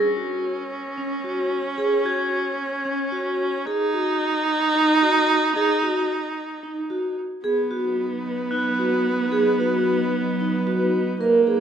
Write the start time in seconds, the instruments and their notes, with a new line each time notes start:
Already playing: viola C#4, crotales A#6
0.17 vibraphone F#4
0.98 vibraphone C#4
1.24 vibraphone F#4
1.78 vibraphone G#4
2.05 vibraphone F#4, crotales G#6
2.85 vibraphone C#4
3.12 vibraphone F#4
3.65 viola D#4, vibraphone G#4
3.94 vibraphone F#4
4.75 vibraphone D#4
5.02 vibraphone F#4
5.56 vibraphone G#4
5.83 vibraphone F#4
6.63 vibraphone D#4
6.90 vibraphone F#4
7.44 ambient pad F#3 D#4 B4, viola B3, vibraphone G#4
7.71 vibraphone F#4
8.51 vibraphone D#4, crotales F#6
8.79 vibraphone F#4
9.32 vibraphone G#4
9.60 vibraphone F#4
10.40 vibraphone D#4
10.67 vibraphone F#4
11.20 ambient pad G#3 A#4, viola A#3, vibraphone A#4
11.47 vibraphone G#4